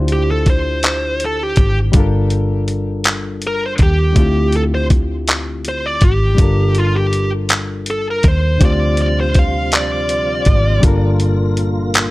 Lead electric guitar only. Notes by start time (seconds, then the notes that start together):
0.13 G4
0.31 A4
0.50 C5
1.25 A4
1.43 G4
3.47 A#4
3.66 C5
3.83 G4
4.56 A4
4.75 C5
5.69 C5
5.86 D5
6.04 G4
6.78 F4
6.96 G4
7.90 A4
8.11 A#4
8.28 C5
8.65 D5
9.02 D5
9.20 C5
9.39 F5
9.75 D5